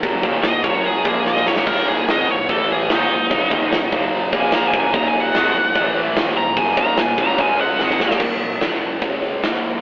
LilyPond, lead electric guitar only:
\new Staff \with { instrumentName = "Lead electric guitar" } { \time 4/4 \key ees \minor \tempo 4 = 147 r4 ees''8 des''8 aes'8 aes'8 ees''8 des''8 | bes'8 aes'8 ees''8 des''8 a'8 aes'8 ees'4~ | ees'2 \tuplet 3/2 { r4 aes''8 bes''8 aes''8 aes''8 } | \tuplet 3/2 { bes''8 aes''8 ges''8~ } ges''4. r4 bes''8 |
aes''8 bes''8 aes''8 bes''8 aes''8 ges''4. | r1 | }